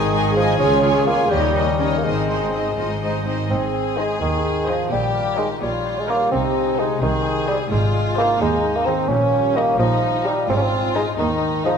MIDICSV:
0, 0, Header, 1, 8, 480
1, 0, Start_track
1, 0, Key_signature, -4, "major"
1, 0, Tempo, 480384
1, 589, Time_signature, 6, 3, 24, 8
1, 4444, Tempo, 464396
1, 12022, End_track
2, 0, Start_track
2, 0, Title_t, "Violin section"
2, 0, Program_c, 0, 48
2, 0, Note_on_c, 0, 80, 54
2, 117, Note_off_c, 0, 80, 0
2, 129, Note_on_c, 0, 80, 47
2, 354, Note_off_c, 0, 80, 0
2, 371, Note_on_c, 0, 80, 54
2, 585, Note_off_c, 0, 80, 0
2, 597, Note_on_c, 0, 80, 55
2, 825, Note_off_c, 0, 80, 0
2, 840, Note_on_c, 0, 80, 42
2, 1067, Note_off_c, 0, 80, 0
2, 1083, Note_on_c, 0, 80, 45
2, 1308, Note_off_c, 0, 80, 0
2, 1319, Note_on_c, 0, 75, 48
2, 1547, Note_off_c, 0, 75, 0
2, 1565, Note_on_c, 0, 75, 40
2, 1783, Note_off_c, 0, 75, 0
2, 1795, Note_on_c, 0, 75, 42
2, 2024, Note_off_c, 0, 75, 0
2, 2036, Note_on_c, 0, 75, 41
2, 2270, Note_off_c, 0, 75, 0
2, 2282, Note_on_c, 0, 75, 32
2, 2517, Note_off_c, 0, 75, 0
2, 2529, Note_on_c, 0, 75, 32
2, 2751, Note_off_c, 0, 75, 0
2, 2763, Note_on_c, 0, 75, 38
2, 3003, Note_off_c, 0, 75, 0
2, 3015, Note_on_c, 0, 75, 36
2, 3247, Note_off_c, 0, 75, 0
2, 3259, Note_on_c, 0, 75, 35
2, 3495, Note_off_c, 0, 75, 0
2, 3972, Note_on_c, 0, 75, 51
2, 4149, Note_off_c, 0, 75, 0
2, 4696, Note_on_c, 0, 75, 52
2, 4871, Note_off_c, 0, 75, 0
2, 5405, Note_on_c, 0, 73, 48
2, 5588, Note_off_c, 0, 73, 0
2, 6139, Note_on_c, 0, 73, 53
2, 6316, Note_off_c, 0, 73, 0
2, 6857, Note_on_c, 0, 72, 54
2, 7038, Note_off_c, 0, 72, 0
2, 7579, Note_on_c, 0, 72, 57
2, 7758, Note_off_c, 0, 72, 0
2, 8300, Note_on_c, 0, 72, 58
2, 8476, Note_off_c, 0, 72, 0
2, 9018, Note_on_c, 0, 72, 66
2, 9192, Note_off_c, 0, 72, 0
2, 9735, Note_on_c, 0, 75, 57
2, 9910, Note_off_c, 0, 75, 0
2, 10439, Note_on_c, 0, 75, 63
2, 10620, Note_off_c, 0, 75, 0
2, 11176, Note_on_c, 0, 75, 55
2, 11349, Note_off_c, 0, 75, 0
2, 11882, Note_on_c, 0, 75, 58
2, 12022, Note_off_c, 0, 75, 0
2, 12022, End_track
3, 0, Start_track
3, 0, Title_t, "Violin section"
3, 0, Program_c, 1, 48
3, 0, Note_on_c, 1, 63, 50
3, 0, Note_on_c, 1, 75, 47
3, 121, Note_off_c, 1, 63, 0
3, 123, Note_off_c, 1, 75, 0
3, 145, Note_on_c, 1, 75, 39
3, 146, Note_on_c, 1, 63, 40
3, 362, Note_off_c, 1, 63, 0
3, 362, Note_off_c, 1, 75, 0
3, 376, Note_on_c, 1, 75, 52
3, 382, Note_on_c, 1, 63, 50
3, 592, Note_on_c, 1, 65, 53
3, 593, Note_on_c, 1, 73, 53
3, 595, Note_off_c, 1, 75, 0
3, 599, Note_off_c, 1, 63, 0
3, 823, Note_off_c, 1, 65, 0
3, 823, Note_off_c, 1, 73, 0
3, 835, Note_on_c, 1, 73, 47
3, 840, Note_on_c, 1, 65, 42
3, 1064, Note_off_c, 1, 73, 0
3, 1066, Note_off_c, 1, 65, 0
3, 1080, Note_on_c, 1, 73, 43
3, 1083, Note_on_c, 1, 65, 42
3, 1307, Note_off_c, 1, 73, 0
3, 1308, Note_off_c, 1, 65, 0
3, 1323, Note_on_c, 1, 73, 40
3, 1329, Note_on_c, 1, 63, 43
3, 1549, Note_off_c, 1, 73, 0
3, 1552, Note_off_c, 1, 63, 0
3, 1569, Note_on_c, 1, 73, 38
3, 1570, Note_on_c, 1, 63, 38
3, 1796, Note_off_c, 1, 63, 0
3, 1796, Note_off_c, 1, 73, 0
3, 1811, Note_on_c, 1, 73, 43
3, 1812, Note_on_c, 1, 63, 41
3, 2039, Note_off_c, 1, 73, 0
3, 2040, Note_off_c, 1, 63, 0
3, 2058, Note_on_c, 1, 63, 43
3, 2066, Note_on_c, 1, 72, 46
3, 2285, Note_off_c, 1, 63, 0
3, 2289, Note_off_c, 1, 72, 0
3, 2298, Note_on_c, 1, 63, 35
3, 2299, Note_on_c, 1, 72, 37
3, 2527, Note_off_c, 1, 63, 0
3, 2527, Note_off_c, 1, 72, 0
3, 2543, Note_on_c, 1, 63, 33
3, 2544, Note_on_c, 1, 72, 32
3, 2773, Note_off_c, 1, 63, 0
3, 2773, Note_off_c, 1, 72, 0
3, 2789, Note_on_c, 1, 63, 37
3, 2790, Note_on_c, 1, 72, 34
3, 3007, Note_off_c, 1, 63, 0
3, 3012, Note_off_c, 1, 72, 0
3, 3019, Note_on_c, 1, 63, 29
3, 3024, Note_on_c, 1, 72, 34
3, 3250, Note_off_c, 1, 63, 0
3, 3253, Note_off_c, 1, 72, 0
3, 3262, Note_on_c, 1, 63, 39
3, 3265, Note_on_c, 1, 72, 41
3, 3495, Note_on_c, 1, 68, 60
3, 3496, Note_off_c, 1, 63, 0
3, 3498, Note_off_c, 1, 72, 0
3, 4884, Note_off_c, 1, 68, 0
3, 4921, Note_on_c, 1, 67, 61
3, 5635, Note_off_c, 1, 67, 0
3, 5668, Note_on_c, 1, 65, 50
3, 6369, Note_off_c, 1, 65, 0
3, 6386, Note_on_c, 1, 63, 53
3, 7093, Note_off_c, 1, 63, 0
3, 7109, Note_on_c, 1, 68, 62
3, 7810, Note_off_c, 1, 68, 0
3, 7834, Note_on_c, 1, 65, 62
3, 8529, Note_off_c, 1, 65, 0
3, 8543, Note_on_c, 1, 63, 55
3, 9252, Note_off_c, 1, 63, 0
3, 9265, Note_on_c, 1, 61, 58
3, 9961, Note_off_c, 1, 61, 0
3, 9963, Note_on_c, 1, 63, 61
3, 10668, Note_off_c, 1, 63, 0
3, 10691, Note_on_c, 1, 65, 67
3, 11393, Note_off_c, 1, 65, 0
3, 11408, Note_on_c, 1, 63, 60
3, 12022, Note_off_c, 1, 63, 0
3, 12022, End_track
4, 0, Start_track
4, 0, Title_t, "Harp"
4, 0, Program_c, 2, 46
4, 0, Note_on_c, 2, 44, 54
4, 0, Note_on_c, 2, 51, 42
4, 0, Note_on_c, 2, 56, 44
4, 0, Note_on_c, 2, 63, 46
4, 0, Note_on_c, 2, 75, 45
4, 118, Note_off_c, 2, 75, 0
4, 129, Note_on_c, 2, 75, 42
4, 349, Note_off_c, 2, 63, 0
4, 361, Note_on_c, 2, 63, 45
4, 594, Note_on_c, 2, 49, 48
4, 605, Note_off_c, 2, 51, 0
4, 611, Note_off_c, 2, 44, 0
4, 611, Note_off_c, 2, 63, 0
4, 612, Note_off_c, 2, 75, 0
4, 813, Note_off_c, 2, 56, 0
4, 825, Note_on_c, 2, 56, 38
4, 1073, Note_on_c, 2, 65, 39
4, 1080, Note_on_c, 2, 73, 40
4, 1307, Note_on_c, 2, 51, 53
4, 1322, Note_off_c, 2, 56, 0
4, 1325, Note_off_c, 2, 49, 0
4, 1328, Note_off_c, 2, 65, 0
4, 1554, Note_on_c, 2, 61, 37
4, 1796, Note_on_c, 2, 63, 32
4, 1803, Note_on_c, 2, 70, 37
4, 2044, Note_on_c, 2, 44, 40
4, 2054, Note_off_c, 2, 51, 0
4, 2057, Note_off_c, 2, 61, 0
4, 2058, Note_off_c, 2, 70, 0
4, 2058, Note_off_c, 2, 73, 0
4, 2290, Note_on_c, 2, 51, 29
4, 2531, Note_on_c, 2, 60, 38
4, 2770, Note_off_c, 2, 63, 0
4, 2782, Note_on_c, 2, 63, 37
4, 3025, Note_on_c, 2, 68, 32
4, 3251, Note_off_c, 2, 63, 0
4, 3263, Note_on_c, 2, 63, 33
4, 3485, Note_off_c, 2, 44, 0
4, 3497, Note_on_c, 2, 44, 41
4, 3524, Note_off_c, 2, 51, 0
4, 3718, Note_off_c, 2, 60, 0
4, 3730, Note_on_c, 2, 60, 35
4, 3964, Note_off_c, 2, 63, 0
4, 3976, Note_on_c, 2, 63, 42
4, 4198, Note_off_c, 2, 68, 0
4, 4210, Note_on_c, 2, 68, 44
4, 4432, Note_off_c, 2, 63, 0
4, 4444, Note_on_c, 2, 63, 35
4, 4685, Note_on_c, 2, 51, 33
4, 4923, Note_on_c, 2, 46, 42
4, 4943, Note_off_c, 2, 60, 0
4, 4946, Note_off_c, 2, 44, 0
4, 4946, Note_off_c, 2, 51, 0
4, 4946, Note_off_c, 2, 68, 0
4, 5165, Note_on_c, 2, 58, 38
4, 5397, Note_off_c, 2, 63, 0
4, 5410, Note_on_c, 2, 63, 39
4, 5652, Note_on_c, 2, 73, 42
4, 5883, Note_off_c, 2, 63, 0
4, 5895, Note_on_c, 2, 63, 39
4, 6136, Note_on_c, 2, 55, 37
4, 6372, Note_on_c, 2, 48, 42
4, 6393, Note_off_c, 2, 46, 0
4, 6393, Note_off_c, 2, 58, 0
4, 6395, Note_off_c, 2, 73, 0
4, 6396, Note_off_c, 2, 55, 0
4, 6619, Note_on_c, 2, 56, 35
4, 6849, Note_off_c, 2, 63, 0
4, 6862, Note_on_c, 2, 63, 44
4, 7102, Note_on_c, 2, 72, 47
4, 7333, Note_off_c, 2, 63, 0
4, 7346, Note_on_c, 2, 63, 42
4, 7582, Note_on_c, 2, 60, 45
4, 7817, Note_on_c, 2, 44, 51
4, 7838, Note_off_c, 2, 48, 0
4, 8045, Note_off_c, 2, 56, 0
4, 8058, Note_on_c, 2, 56, 37
4, 8286, Note_off_c, 2, 63, 0
4, 8298, Note_on_c, 2, 63, 49
4, 8528, Note_off_c, 2, 72, 0
4, 8540, Note_on_c, 2, 72, 50
4, 8760, Note_off_c, 2, 63, 0
4, 8772, Note_on_c, 2, 63, 48
4, 9009, Note_on_c, 2, 51, 43
4, 9248, Note_on_c, 2, 46, 50
4, 9266, Note_off_c, 2, 44, 0
4, 9267, Note_off_c, 2, 56, 0
4, 9268, Note_off_c, 2, 51, 0
4, 9268, Note_off_c, 2, 60, 0
4, 9270, Note_off_c, 2, 72, 0
4, 9487, Note_on_c, 2, 55, 42
4, 9719, Note_off_c, 2, 63, 0
4, 9731, Note_on_c, 2, 63, 45
4, 9967, Note_on_c, 2, 75, 52
4, 10197, Note_off_c, 2, 63, 0
4, 10210, Note_on_c, 2, 63, 39
4, 10446, Note_on_c, 2, 58, 46
4, 10687, Note_on_c, 2, 44, 50
4, 10703, Note_off_c, 2, 46, 0
4, 10703, Note_off_c, 2, 55, 0
4, 10705, Note_off_c, 2, 58, 0
4, 10923, Note_on_c, 2, 56, 41
4, 11151, Note_off_c, 2, 63, 0
4, 11163, Note_on_c, 2, 63, 43
4, 11398, Note_off_c, 2, 75, 0
4, 11411, Note_on_c, 2, 75, 49
4, 11637, Note_off_c, 2, 63, 0
4, 11650, Note_on_c, 2, 63, 44
4, 11888, Note_on_c, 2, 51, 43
4, 12022, Note_off_c, 2, 44, 0
4, 12022, Note_off_c, 2, 51, 0
4, 12022, Note_off_c, 2, 56, 0
4, 12022, Note_off_c, 2, 63, 0
4, 12022, Note_off_c, 2, 75, 0
4, 12022, End_track
5, 0, Start_track
5, 0, Title_t, "Viola section"
5, 0, Program_c, 3, 48
5, 0, Note_on_c, 3, 68, 66
5, 1271, Note_off_c, 3, 68, 0
5, 1303, Note_on_c, 3, 67, 59
5, 1544, Note_off_c, 3, 67, 0
5, 1552, Note_on_c, 3, 63, 42
5, 1632, Note_off_c, 3, 63, 0
5, 1794, Note_on_c, 3, 61, 44
5, 1874, Note_off_c, 3, 61, 0
5, 2035, Note_on_c, 3, 60, 44
5, 2705, Note_off_c, 3, 60, 0
5, 2767, Note_on_c, 3, 65, 44
5, 2847, Note_off_c, 3, 65, 0
5, 3014, Note_on_c, 3, 63, 35
5, 3254, Note_off_c, 3, 63, 0
5, 3258, Note_on_c, 3, 60, 37
5, 3338, Note_off_c, 3, 60, 0
5, 3971, Note_on_c, 3, 72, 48
5, 3972, Note_on_c, 3, 63, 48
5, 4148, Note_off_c, 3, 72, 0
5, 4149, Note_off_c, 3, 63, 0
5, 4675, Note_on_c, 3, 63, 47
5, 4676, Note_on_c, 3, 72, 49
5, 4860, Note_off_c, 3, 63, 0
5, 4860, Note_off_c, 3, 72, 0
5, 5403, Note_on_c, 3, 70, 51
5, 5408, Note_on_c, 3, 63, 52
5, 5587, Note_off_c, 3, 70, 0
5, 5589, Note_off_c, 3, 63, 0
5, 6137, Note_on_c, 3, 70, 52
5, 6140, Note_on_c, 3, 63, 46
5, 6315, Note_off_c, 3, 70, 0
5, 6317, Note_off_c, 3, 63, 0
5, 6854, Note_on_c, 3, 63, 53
5, 6857, Note_on_c, 3, 68, 54
5, 7037, Note_off_c, 3, 63, 0
5, 7038, Note_off_c, 3, 68, 0
5, 7580, Note_on_c, 3, 68, 51
5, 7582, Note_on_c, 3, 63, 54
5, 7759, Note_off_c, 3, 68, 0
5, 7760, Note_off_c, 3, 63, 0
5, 8303, Note_on_c, 3, 63, 54
5, 8303, Note_on_c, 3, 68, 59
5, 8478, Note_off_c, 3, 63, 0
5, 8478, Note_off_c, 3, 68, 0
5, 9007, Note_on_c, 3, 63, 59
5, 9008, Note_on_c, 3, 68, 55
5, 9186, Note_off_c, 3, 63, 0
5, 9187, Note_off_c, 3, 68, 0
5, 9729, Note_on_c, 3, 63, 55
5, 9732, Note_on_c, 3, 67, 56
5, 9907, Note_off_c, 3, 63, 0
5, 9908, Note_off_c, 3, 67, 0
5, 10441, Note_on_c, 3, 67, 59
5, 10445, Note_on_c, 3, 63, 56
5, 10621, Note_off_c, 3, 67, 0
5, 10624, Note_off_c, 3, 63, 0
5, 11160, Note_on_c, 3, 63, 60
5, 11162, Note_on_c, 3, 68, 55
5, 11341, Note_off_c, 3, 63, 0
5, 11342, Note_off_c, 3, 68, 0
5, 11887, Note_on_c, 3, 63, 57
5, 11889, Note_on_c, 3, 68, 54
5, 12022, Note_off_c, 3, 63, 0
5, 12022, Note_off_c, 3, 68, 0
5, 12022, End_track
6, 0, Start_track
6, 0, Title_t, "Bassoon"
6, 0, Program_c, 4, 70
6, 0, Note_on_c, 4, 51, 64
6, 346, Note_off_c, 4, 51, 0
6, 358, Note_on_c, 4, 53, 72
6, 582, Note_off_c, 4, 53, 0
6, 588, Note_on_c, 4, 61, 74
6, 1054, Note_off_c, 4, 61, 0
6, 1066, Note_on_c, 4, 58, 60
6, 1300, Note_off_c, 4, 58, 0
6, 1305, Note_on_c, 4, 55, 69
6, 1975, Note_on_c, 4, 58, 45
6, 1990, Note_off_c, 4, 55, 0
6, 2040, Note_on_c, 4, 56, 61
6, 2055, Note_off_c, 4, 58, 0
6, 3262, Note_off_c, 4, 56, 0
6, 3495, Note_on_c, 4, 60, 57
6, 3970, Note_on_c, 4, 56, 57
6, 3985, Note_off_c, 4, 60, 0
6, 4202, Note_off_c, 4, 56, 0
6, 4208, Note_on_c, 4, 51, 55
6, 4676, Note_off_c, 4, 51, 0
6, 4690, Note_on_c, 4, 53, 56
6, 4922, Note_off_c, 4, 53, 0
6, 4928, Note_on_c, 4, 55, 60
6, 5401, Note_off_c, 4, 55, 0
6, 5407, Note_on_c, 4, 56, 64
6, 5517, Note_off_c, 4, 56, 0
6, 5655, Note_on_c, 4, 55, 54
6, 6036, Note_on_c, 4, 56, 55
6, 6052, Note_off_c, 4, 55, 0
6, 6143, Note_off_c, 4, 56, 0
6, 6149, Note_on_c, 4, 58, 72
6, 6367, Note_off_c, 4, 58, 0
6, 6373, Note_on_c, 4, 60, 67
6, 6866, Note_on_c, 4, 56, 63
6, 6881, Note_off_c, 4, 60, 0
6, 7098, Note_off_c, 4, 56, 0
6, 7104, Note_on_c, 4, 51, 59
6, 7570, Note_off_c, 4, 51, 0
6, 7577, Note_on_c, 4, 55, 67
6, 7685, Note_off_c, 4, 55, 0
6, 7819, Note_on_c, 4, 56, 56
6, 8288, Note_off_c, 4, 56, 0
6, 8302, Note_on_c, 4, 58, 76
6, 8533, Note_off_c, 4, 58, 0
6, 8541, Note_on_c, 4, 56, 74
6, 8905, Note_on_c, 4, 58, 70
6, 8921, Note_off_c, 4, 56, 0
6, 9000, Note_on_c, 4, 60, 76
6, 9015, Note_off_c, 4, 58, 0
6, 9240, Note_on_c, 4, 61, 84
6, 9255, Note_off_c, 4, 60, 0
6, 9731, Note_on_c, 4, 58, 78
6, 9746, Note_off_c, 4, 61, 0
6, 9962, Note_off_c, 4, 58, 0
6, 9968, Note_on_c, 4, 53, 75
6, 10451, Note_on_c, 4, 55, 65
6, 10466, Note_off_c, 4, 53, 0
6, 10688, Note_off_c, 4, 55, 0
6, 10695, Note_on_c, 4, 60, 75
6, 10767, Note_on_c, 4, 61, 61
6, 10783, Note_off_c, 4, 60, 0
6, 10832, Note_on_c, 4, 60, 80
6, 10848, Note_off_c, 4, 61, 0
6, 11164, Note_off_c, 4, 60, 0
6, 11170, Note_on_c, 4, 56, 65
6, 11277, Note_off_c, 4, 56, 0
6, 11410, Note_on_c, 4, 51, 67
6, 11880, Note_off_c, 4, 51, 0
6, 11892, Note_on_c, 4, 53, 67
6, 12000, Note_off_c, 4, 53, 0
6, 12022, End_track
7, 0, Start_track
7, 0, Title_t, "Cello section"
7, 0, Program_c, 5, 48
7, 0, Note_on_c, 5, 44, 51
7, 509, Note_off_c, 5, 44, 0
7, 596, Note_on_c, 5, 37, 60
7, 1222, Note_off_c, 5, 37, 0
7, 1311, Note_on_c, 5, 39, 44
7, 1950, Note_off_c, 5, 39, 0
7, 2034, Note_on_c, 5, 44, 43
7, 2681, Note_off_c, 5, 44, 0
7, 2774, Note_on_c, 5, 44, 37
7, 3418, Note_off_c, 5, 44, 0
7, 3505, Note_on_c, 5, 44, 54
7, 4067, Note_off_c, 5, 44, 0
7, 4217, Note_on_c, 5, 39, 48
7, 4781, Note_off_c, 5, 39, 0
7, 4931, Note_on_c, 5, 46, 54
7, 5504, Note_off_c, 5, 46, 0
7, 5653, Note_on_c, 5, 46, 50
7, 6226, Note_off_c, 5, 46, 0
7, 6383, Note_on_c, 5, 48, 56
7, 6956, Note_off_c, 5, 48, 0
7, 7107, Note_on_c, 5, 48, 51
7, 7674, Note_off_c, 5, 48, 0
7, 7821, Note_on_c, 5, 44, 60
7, 8388, Note_off_c, 5, 44, 0
7, 8537, Note_on_c, 5, 39, 61
7, 9100, Note_off_c, 5, 39, 0
7, 9246, Note_on_c, 5, 46, 63
7, 9818, Note_off_c, 5, 46, 0
7, 9967, Note_on_c, 5, 46, 60
7, 10535, Note_off_c, 5, 46, 0
7, 10690, Note_on_c, 5, 44, 72
7, 11257, Note_off_c, 5, 44, 0
7, 11416, Note_on_c, 5, 39, 57
7, 11984, Note_off_c, 5, 39, 0
7, 12022, End_track
8, 0, Start_track
8, 0, Title_t, "Double bass section"
8, 0, Program_c, 6, 48
8, 0, Note_on_c, 6, 32, 54
8, 505, Note_off_c, 6, 32, 0
8, 588, Note_on_c, 6, 37, 65
8, 1218, Note_off_c, 6, 37, 0
8, 1307, Note_on_c, 6, 39, 52
8, 1948, Note_off_c, 6, 39, 0
8, 2039, Note_on_c, 6, 32, 54
8, 2683, Note_off_c, 6, 32, 0
8, 2774, Note_on_c, 6, 32, 45
8, 3418, Note_off_c, 6, 32, 0
8, 3497, Note_on_c, 6, 32, 59
8, 4063, Note_off_c, 6, 32, 0
8, 4207, Note_on_c, 6, 39, 52
8, 4776, Note_off_c, 6, 39, 0
8, 4930, Note_on_c, 6, 34, 61
8, 5504, Note_off_c, 6, 34, 0
8, 5652, Note_on_c, 6, 34, 59
8, 6225, Note_off_c, 6, 34, 0
8, 6367, Note_on_c, 6, 36, 55
8, 6948, Note_off_c, 6, 36, 0
8, 7098, Note_on_c, 6, 36, 62
8, 7670, Note_off_c, 6, 36, 0
8, 7816, Note_on_c, 6, 32, 74
8, 8386, Note_off_c, 6, 32, 0
8, 8526, Note_on_c, 6, 39, 63
8, 9095, Note_off_c, 6, 39, 0
8, 9242, Note_on_c, 6, 34, 68
8, 9816, Note_off_c, 6, 34, 0
8, 9965, Note_on_c, 6, 34, 64
8, 10534, Note_off_c, 6, 34, 0
8, 10685, Note_on_c, 6, 32, 68
8, 11255, Note_off_c, 6, 32, 0
8, 11406, Note_on_c, 6, 39, 58
8, 11980, Note_off_c, 6, 39, 0
8, 12022, End_track
0, 0, End_of_file